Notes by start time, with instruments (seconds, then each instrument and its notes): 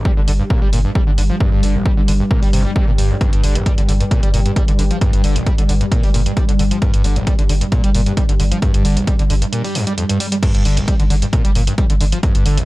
Already playing: ambient pad G2 G3
0.05 acid bass G3, kick
0.17 sub bass G1, acid bass D3
0.28 sub bass G1, acid bass D3, open hi-hat
0.40 acid bass G2
0.50 acid bass A#2, kick
0.62 sub bass G1, acid bass G3
0.73 sub bass G1, acid bass A#2, open hi-hat
0.85 acid bass G2
0.95 acid bass G3, kick
1.07 sub bass G1, acid bass D3
1.18 sub bass G1, acid bass D3, open hi-hat
1.30 acid bass F3
1.40 acid bass G2, kick
1.52 sub bass G1, acid bass G2
1.63 sub bass G1, acid bass D3, open hi-hat
1.75 acid bass G1
1.86 acid bass G3, kick
1.97 sub bass G1, acid bass D3
2.08 sub bass G1, acid bass D3, open hi-hat
2.20 acid bass G2
2.31 acid bass A#2, kick
2.42 sub bass G1, acid bass G3, open hi-hat
2.53 sub bass G1, acid bass C3, open hi-hat
2.65 acid bass G3
2.76 acid bass G3, kick
2.88 sub bass G1, acid bass A#2
2.98 sub bass G1, acid bass G2, open hi-hat
3.10 acid bass F2
3.21 acid bass G2, kick, closed hi-hat
3.33 sub bass G1, acid bass G2, closed hi-hat
3.43 sub bass G1, acid bass D3, open hi-hat
3.55 acid bass G1, closed hi-hat
3.66 acid bass G3, kick, closed hi-hat
3.78 sub bass G1, acid bass D3, closed hi-hat
3.89 sub bass G1, acid bass D3, open hi-hat
4.00 acid bass G2, closed hi-hat
4.11 acid bass A#2, kick, closed hi-hat
4.23 sub bass G1, acid bass G3, closed hi-hat
4.34 sub bass G1, acid bass A#2, open hi-hat
4.46 acid bass G2, closed hi-hat
4.56 acid bass G3, kick, closed hi-hat
4.68 sub bass G1, acid bass D3, closed hi-hat
4.79 sub bass G1, acid bass D3, open hi-hat
4.91 acid bass F3, closed hi-hat
5.01 acid bass G2, kick, closed hi-hat
5.13 sub bass G1, acid bass G2, closed hi-hat
5.24 sub bass G1, acid bass D3, open hi-hat
5.36 acid bass G1, closed hi-hat
5.46 acid bass G3, kick, closed hi-hat
5.58 sub bass G1, acid bass D3, closed hi-hat
5.69 sub bass G1, acid bass D3, open hi-hat
5.81 acid bass G2, closed hi-hat
5.92 acid bass A#2, kick, closed hi-hat
6.03 sub bass G1, acid bass G3, open hi-hat
6.14 sub bass G1, acid bass A#2, open hi-hat
6.26 acid bass G2, closed hi-hat
6.37 acid bass G3, kick, closed hi-hat
6.49 sub bass G1, acid bass D3, closed hi-hat
6.59 sub bass G1, acid bass D3, open hi-hat
6.71 acid bass F3, closed hi-hat
6.82 acid bass G2, kick, closed hi-hat
6.94 sub bass G1, acid bass G2, closed hi-hat
7.04 sub bass G1, acid bass D3, open hi-hat
7.16 acid bass G1, closed hi-hat
7.27 acid bass G3, kick, closed hi-hat
7.39 sub bass G1, acid bass D3, closed hi-hat
7.49 sub bass G1, acid bass D3, open hi-hat
7.61 acid bass G2, closed hi-hat
7.72 acid bass A#2, kick, closed hi-hat
7.84 sub bass G1, acid bass G3, closed hi-hat
7.95 sub bass G1, acid bass A#2, open hi-hat
8.06 acid bass G2, closed hi-hat
8.17 acid bass G3, kick, closed hi-hat
8.29 sub bass G1, acid bass D3, closed hi-hat
8.40 sub bass G1, acid bass D3, open hi-hat
8.51 acid bass F3, closed hi-hat
8.62 acid bass G2, kick, closed hi-hat
8.74 sub bass G1, acid bass G2, closed hi-hat
8.85 sub bass G1, acid bass D3, open hi-hat
8.97 acid bass G1, closed hi-hat
9.07 acid bass G3, kick, closed hi-hat
9.19 sub bass G1, acid bass D3, closed hi-hat
9.30 sub bass G1, acid bass D3, open hi-hat
9.42 acid bass G2, closed hi-hat
9.52 acid bass A#2, closed hi-hat
9.64 acid bass G3, open hi-hat
9.75 acid bass G2, open hi-hat
9.87 acid bass G3, closed hi-hat
9.98 acid bass F2, closed hi-hat
10.09 acid bass G2, closed hi-hat
10.20 acid bass G3, open hi-hat
10.32 acid bass G3, closed hi-hat
10.43 acid bass G2, ambient pad G2 G3, kick, closed hi-hat, crash
10.54 sub bass G1, acid bass G2, closed hi-hat
10.65 sub bass G1, acid bass D3, open hi-hat
10.77 acid bass G1, closed hi-hat
10.88 acid bass G3, kick, closed hi-hat
11.00 sub bass G1, acid bass D3, closed hi-hat
11.10 sub bass G1, acid bass D3, open hi-hat
11.22 acid bass G2, closed hi-hat
11.33 acid bass A#2, kick, closed hi-hat
11.45 sub bass G1, acid bass G3, closed hi-hat
11.55 sub bass G1, acid bass A#2, open hi-hat
11.67 acid bass G2, closed hi-hat
11.78 acid bass G3, kick, closed hi-hat
11.90 sub bass G1, acid bass D3, closed hi-hat
12.01 sub bass G1, acid bass D3, open hi-hat
12.12 acid bass F3, closed hi-hat
12.23 acid bass G2, kick, closed hi-hat
12.35 sub bass G1, acid bass G2, closed hi-hat
12.46 sub bass G1, acid bass D3, open hi-hat
12.58 acid bass G1, closed hi-hat